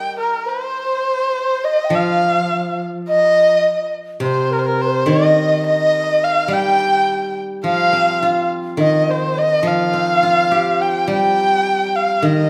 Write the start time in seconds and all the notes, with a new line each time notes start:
Already playing: G3 G4 A#4 D#5 G5
0.16 A#4
0.46 C5
1.34 C5
1.64 D#5
1.85 G5
1.90 F3
1.95 F5
3.08 D#5
4.20 C3 C5
4.51 A#4
4.59 C5
4.66 A#4
4.81 C5
5.06 D#3 D#5
5.10 D#5
5.65 D#5
6.08 D#5
6.23 F5
6.48 G3
6.53 G5
7.64 F3 F5
7.93 C4
8.22 F4 F5
8.77 D#3 D#5
9.08 C5
9.38 D#5
9.63 F3 F5
9.67 F5
9.93 C4
10.23 F4
10.51 G4
10.81 G5
11.07 G3 G5
11.12 G5
11.96 F5
12.22 D#3 D#5